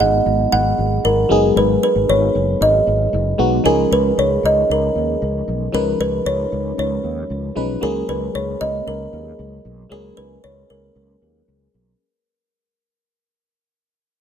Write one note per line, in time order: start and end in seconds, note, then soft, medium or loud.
0.00 0.19 G#1 loud
0.00 1.25 F#3 medium
0.00 1.26 G#3 medium
0.00 1.26 B3 medium
0.00 1.26 D#4 medium
0.00 1.27 G#4 medium
0.00 0.51 F#5 loud
0.26 0.45 G#1 medium
0.52 0.71 G#1 loud
0.52 1.01 F#5 loud
0.78 0.97 G#1 loud
1.04 1.23 G#1 loud
1.04 1.41 A#4 loud
1.29 1.49 F#1 loud
1.29 3.34 F#3 medium
1.29 3.35 G#3 medium
1.29 3.35 B3 medium
1.29 3.35 D#4 medium
1.29 3.35 G#4 medium
1.56 1.75 G#1 loud
1.56 1.82 B4 loud
1.83 2.10 B4 medium
1.95 2.05 G#1 medium
2.09 2.27 G#1 loud
2.09 2.63 C#5 loud
2.35 2.53 F#1 medium
2.61 2.79 G#1 loud
2.61 3.36 D#5 medium
2.87 3.05 G#1 loud
3.13 3.32 F#1 loud
3.38 3.58 B1 medium
3.38 3.65 F#3 medium
3.38 3.63 G#3 medium
3.38 3.65 B3 medium
3.38 3.64 D#4 medium
3.38 3.65 F#4 medium
3.64 3.84 C#2 loud
3.64 5.69 F3 medium
3.64 5.69 G#3 medium
3.64 5.70 C#4 medium
3.64 5.70 D#4 medium
3.64 5.70 G#4 medium
3.64 3.92 A#4 medium
3.91 4.10 C#2 loud
3.91 4.19 B4 medium
4.18 4.36 C#2 loud
4.18 4.45 C#5 loud
4.43 4.62 C#2 loud
4.43 4.71 D#5 loud
4.69 4.88 C#2 medium
4.69 5.45 A#4 medium
4.95 5.14 D#2 medium
5.22 5.40 C#2 loud
5.48 5.66 B1 medium
5.72 5.92 C#2 loud
5.72 7.52 F3 medium
5.72 7.52 G#3 medium
5.72 7.52 C#4 medium
5.72 7.53 D#4 medium
5.72 6.01 A#4 loud
5.72 7.53 B4 medium
6.00 6.18 C#2 loud
6.00 6.12 B4 loud
6.25 6.44 C#2 loud
6.25 6.78 C#5 loud
6.52 6.71 C#2 loud
6.78 6.97 C#2 loud
6.78 7.53 C#5 medium
7.04 7.22 D#2 medium
7.30 7.49 C#2 medium
7.55 7.75 B1 medium
7.55 7.82 F3 medium
7.55 7.80 G#3 medium
7.55 7.82 C#4 medium
7.55 7.82 D#4 medium
7.55 7.83 B4 medium
7.81 8.01 C#2 loud
7.81 9.86 F#3 medium
7.81 9.87 G#3 medium
7.81 9.87 A#3 medium
7.81 9.87 C#4 medium
7.81 9.87 G#4 medium
7.81 8.09 A#4 medium
8.08 8.27 C#2 loud
8.08 8.35 B4 medium
8.34 8.53 C#2 loud
8.34 8.62 C#5 loud
8.61 8.79 C#2 loud
8.61 8.88 D#5 loud
8.87 9.05 C#2 loud
8.87 9.61 A#4 medium
9.13 9.31 D#2 medium
9.39 9.58 C#2 loud
9.65 9.84 B1 medium
9.89 10.10 C#2 loud
9.89 11.95 F#3 medium
9.89 11.95 G#3 medium
9.89 11.96 A#3 medium
9.89 11.96 C#4 medium
9.89 11.96 G#4 medium
9.89 10.18 A#4 loud
10.17 10.36 C#2 loud
10.17 10.44 B4 loud
10.44 10.62 C#2 loud
10.44 10.70 C#5 loud
10.70 10.88 C#2 medium
10.70 11.44 A#4 medium
10.95 11.14 C#2 loud
11.22 11.40 D#2 medium
11.48 11.66 C#2 medium
11.74 11.93 B1 medium